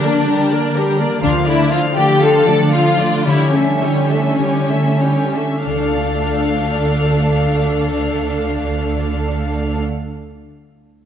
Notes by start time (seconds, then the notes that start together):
Already playing: D3 D4 A#4
0.04 G3 A#3 A#4 D5
0.28 G3 D4 G4 A#4
0.52 G3 A#3 A#4 D5
0.75 G3 G4 A#4
0.98 G3 A#3 A#4 D5
1.22 D2 D3 F3 D4 F4 F5
1.46 A3 D4 E4 D5
1.71 F3 F4 A4 F5
1.96 F3 A3 D4 G4 D5
2.21 F3 D4 F4 A4 F5
2.47 F3 A3 D4 D5
2.72 F3 F4 A4 F5
2.99 F3 A3 D4 D5
3.26 D3 G3 E4 G4 C#5
3.54 G3 A3 C#4 A4 E5
3.81 G3 E4 G4 C#5
4.10 A3 D4 A4 E5
4.38 D3 G3 G4 C#5
4.68 G3 A3 A4 E5
5.00 G3 E4 G4 C#5
5.33 A3 D4 A4 E5
5.65 D2 D3 A3 D4 A4 F5
5.73 A3
5.80 D4
5.87 F4
5.94 A4
6.01 F5